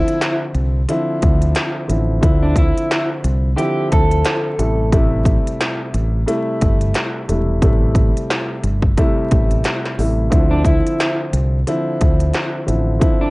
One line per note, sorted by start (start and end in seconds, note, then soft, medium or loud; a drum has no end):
0.00 0.78 D3 medium
0.00 0.79 F3 medium
0.00 0.79 C4 medium
0.00 0.38 E4 medium
0.00 0.79 E4 loud
0.08 closed hi-hat medium
0.21 snare loud
0.21 closed hi-hat loud
0.55 0.85 C2 medium
0.55 closed hi-hat medium
0.88 1.83 D3 medium
0.88 1.83 F3 medium
0.88 1.83 C4 medium
0.88 1.84 E4 loud
0.88 closed hi-hat loud
1.22 1.52 D2 medium
1.22 kick loud
1.22 closed hi-hat medium
1.42 closed hi-hat soft
1.55 snare loud
1.55 closed hi-hat medium
1.88 2.20 A1 medium
1.88 2.19 D3 medium
1.88 2.20 F3 medium
1.88 2.20 C4 medium
1.88 2.21 E4 medium
1.88 closed hi-hat medium
2.21 2.71 D2 loud
2.21 3.48 D3 medium
2.21 3.48 F3 medium
2.21 3.49 C4 medium
2.21 3.49 E4 loud
2.21 kick loud
2.21 closed hi-hat medium
2.43 2.55 D4 medium
2.56 3.08 E4 loud
2.56 kick loud
2.56 closed hi-hat medium
2.77 closed hi-hat medium
2.91 snare loud
2.91 closed hi-hat loud
3.24 3.54 C2 medium
3.24 closed hi-hat medium
3.56 4.52 D3 loud
3.56 4.52 F3 medium
3.56 4.52 C4 medium
3.56 4.52 E4 loud
3.56 3.88 G4 medium
3.56 closed hi-hat loud
3.92 4.22 D2 medium
3.92 4.89 A4 medium
3.92 kick loud
3.92 closed hi-hat medium
4.11 closed hi-hat soft
4.25 snare loud
4.25 closed hi-hat medium
4.58 5.37 A1 loud
4.58 4.90 C3 medium
4.58 4.90 G3 medium
4.58 4.91 A3 medium
4.58 4.91 E4 medium
4.58 closed hi-hat medium
4.92 6.19 C3 loud
4.92 6.19 G3 medium
4.92 6.19 A3 medium
4.92 6.19 E4 loud
4.92 kick loud
4.92 closed hi-hat medium
5.25 kick loud
5.25 closed hi-hat medium
5.47 closed hi-hat medium
5.60 snare loud
5.60 closed hi-hat loud
5.94 6.24 A1 medium
5.94 closed hi-hat medium
6.26 7.21 C3 medium
6.26 7.22 G3 medium
6.26 7.22 A3 loud
6.26 7.22 E4 loud
6.26 closed hi-hat loud
6.62 6.92 G1 medium
6.62 kick loud
6.62 closed hi-hat medium
6.81 closed hi-hat soft
6.94 snare loud
6.94 closed hi-hat medium
7.28 7.59 E1 medium
7.28 7.60 C3 medium
7.28 7.60 G3 medium
7.28 7.60 A3 medium
7.28 7.61 E4 medium
7.28 closed hi-hat medium
7.62 8.10 A1 loud
7.62 8.88 C3 medium
7.62 8.89 G3 medium
7.62 8.89 A3 medium
7.62 8.89 E4 loud
7.62 kick loud
7.62 closed hi-hat medium
7.95 kick loud
7.95 closed hi-hat medium
8.17 closed hi-hat medium
8.30 snare loud
8.30 closed hi-hat loud
8.64 8.94 G1 medium
8.64 closed hi-hat medium
8.82 kick medium
8.97 9.92 C3 loud
8.97 9.92 G3 medium
8.97 9.92 A3 medium
8.97 9.93 E4 loud
8.97 kick loud
8.97 closed hi-hat loud
9.31 9.61 A1 loud
9.31 kick loud
9.31 closed hi-hat medium
9.51 closed hi-hat soft
9.64 snare loud
9.64 closed hi-hat medium
9.85 snare soft
9.98 10.28 A1 medium
9.98 10.30 C3 medium
9.98 10.30 G3 medium
9.98 10.30 A3 medium
9.98 10.30 E4 medium
9.98 open hi-hat medium
10.30 10.80 D2 loud
10.30 11.57 D3 medium
10.30 11.57 F3 medium
10.30 11.58 C4 medium
10.30 11.58 E4 loud
10.30 kick loud
10.30 closed hi-hat medium
10.51 10.64 D4 medium
10.65 11.16 E4 medium
10.65 kick loud
10.65 closed hi-hat medium
10.86 closed hi-hat medium
11.00 snare loud
11.00 closed hi-hat loud
11.33 11.63 C2 loud
11.33 closed hi-hat medium
11.67 12.61 D3 medium
11.67 12.62 F3 medium
11.67 12.62 C4 medium
11.67 12.62 E4 loud
11.67 closed hi-hat loud
12.01 12.31 D2 medium
12.01 kick loud
12.01 closed hi-hat medium
12.20 closed hi-hat soft
12.34 snare loud
12.34 closed hi-hat medium
12.66 12.98 A1 medium
12.66 12.98 D3 medium
12.66 12.99 F3 medium
12.66 12.99 C4 medium
12.66 12.99 E4 medium
12.66 closed hi-hat medium
13.00 13.30 D3 medium
13.00 13.30 F3 medium
13.00 13.30 C4 medium
13.00 13.30 E4 loud
13.00 kick loud
13.00 closed hi-hat medium
13.21 13.30 D4 medium